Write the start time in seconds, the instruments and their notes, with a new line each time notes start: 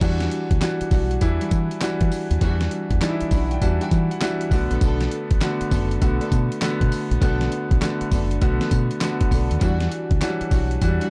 0.01 fingered electric bass E2, grand piano E3 G3 D4 F#4, string section G3 D4 F#4, kick, closed hi-hat, crash, tambourine
0.20 snare, closed hi-hat
0.31 closed hi-hat
0.51 fingered electric bass D2, kick, closed hi-hat
0.61 grand piano E3 G3 D4 F#4, snare, clap, closed hi-hat, tambourine
0.81 muted fingered electric bass stroke, closed hi-hat
0.91 fingered electric bass B1, string section G3 D4 F#4, kick, open hi-hat, tambourine
1.11 closed hi-hat
1.21 fingered electric bass E2, grand piano E3 G3 D4 E4, kick, closed hi-hat, tambourine
1.41 string section G3 D4 F#4, closed hi-hat
1.51 fingered electric bass E3, kick, closed hi-hat, tambourine
1.71 closed hi-hat
1.81 grand piano E3 G3 D4 F#4, snare, clap, closed hi-hat, tambourine
2.01 fingered electric bass E3, kick, closed hi-hat
2.12 open hi-hat, tambourine
2.31 fingered electric bass D#2, closed hi-hat
2.41 fingered electric bass E2, grand piano E3 G3 D4 F#4, string section G3 D4 F#4, kick, closed hi-hat, tambourine
2.61 snare, closed hi-hat
2.71 closed hi-hat
2.91 fingered electric bass E2, kick, closed hi-hat
3.01 grand piano E3 G3 D4 D#4, snare, clap, closed hi-hat, tambourine
3.09 grand piano E4
3.21 muted fingered electric bass stroke, closed hi-hat
3.31 fingered electric bass B1, string section G3 D4 F#4, grand piano B5, kick, open hi-hat, tambourine
3.51 grand piano G5, closed hi-hat
3.61 fingered electric bass E2, grand piano E3 G3 D4 F#4 A5, kick, closed hi-hat, tambourine
3.81 string section G3 D4 F#4, grand piano G5, closed hi-hat
3.91 fingered electric bass E3, kick, closed hi-hat, tambourine
4.11 grand piano F#5, closed hi-hat
4.21 grand piano E3 G3 D4 F#4 E5, snare, clap, closed hi-hat, tambourine
4.41 closed hi-hat
4.51 fingered electric bass B1, grand piano D3 A3 B3 F#4 D5, kick, open hi-hat, tambourine
4.71 fingered electric bass A#1, string section B3 D4 A4, closed hi-hat
4.81 fingered electric bass B1, string section B3 D4 A4, kick, closed hi-hat, tambourine
5.00 snare, closed hi-hat
5.12 closed hi-hat
5.31 fingered electric bass A1, kick, closed hi-hat
5.41 grand piano D3 A3 B3 F#4, snare, clap, closed hi-hat, tambourine
5.61 muted fingered electric bass stroke, closed hi-hat
5.71 fingered electric bass F#1, string section B3 D4 A4, kick, open hi-hat, tambourine
5.91 closed hi-hat
6.02 fingered electric bass B1, grand piano D3 A3 B3 F#4, kick, closed hi-hat, tambourine
6.20 string section B3 D4 A4, closed hi-hat
6.32 fingered electric bass B2, kick, closed hi-hat, tambourine
6.52 closed hi-hat
6.62 grand piano D3 A3 B3 F#4, snare, clap, closed hi-hat, tambourine
6.81 fingered electric bass B2, kick, closed hi-hat
6.92 open hi-hat, tambourine
7.11 fingered electric bass A#1, closed hi-hat
7.21 fingered electric bass B1, grand piano D3 A3 B3 F#4, string section B3 D4 A4, kick, closed hi-hat, tambourine
7.41 snare, closed hi-hat
7.52 closed hi-hat
7.71 fingered electric bass B1, kick, closed hi-hat
7.81 grand piano D3 A3 B3 F#4, snare, clap, closed hi-hat, tambourine
8.01 muted fingered electric bass stroke, closed hi-hat
8.11 fingered electric bass F#1, string section B3 D4 A4, kick, open hi-hat, tambourine
8.31 closed hi-hat
8.41 fingered electric bass B1, grand piano D3 A3 B3 F#4, kick, closed hi-hat, tambourine
8.61 string section B3 D4 A4, snare, closed hi-hat
8.71 fingered electric bass B2, kick, closed hi-hat, tambourine
8.91 closed hi-hat
9.01 grand piano D3 A3 B3 F#4, snare, clap, closed hi-hat, tambourine
9.21 kick, closed hi-hat
9.31 fingered electric bass B1, string section B3 D4 A4, kick, open hi-hat, tambourine
9.51 fingered electric bass D#2, closed hi-hat
9.61 fingered electric bass E2, grand piano E3 G3 D4 F#4, string section G3 D4 F#4, kick, closed hi-hat, tambourine
9.80 snare, closed hi-hat
9.92 closed hi-hat
10.11 fingered electric bass D2, kick, closed hi-hat
10.21 grand piano E3 F#3 D4 F#4, snare, clap, closed hi-hat, tambourine
10.28 grand piano G3
10.41 muted fingered electric bass stroke, closed hi-hat
10.51 fingered electric bass B1, string section G3 D4 F#4, kick, open hi-hat, tambourine
10.71 closed hi-hat
10.81 fingered electric bass E2, grand piano E3 F#3 D4 F#4, kick, closed hi-hat, tambourine
10.88 grand piano G3
11.01 string section G3 D4 F#4, closed hi-hat